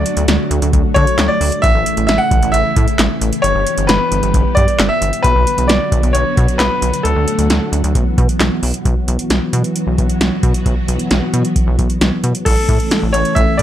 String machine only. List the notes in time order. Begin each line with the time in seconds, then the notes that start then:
Already playing: D3 F#3 A3 F#4
1.63 C#3 E3 E4
3.44 G3 B3 G4
5.24 D3 F#3 B3 F#4
7.05 A3
7.95 E3 B3
8.85 E3 F#3 B3 F#4
12.46 E3 A3 C#4 A4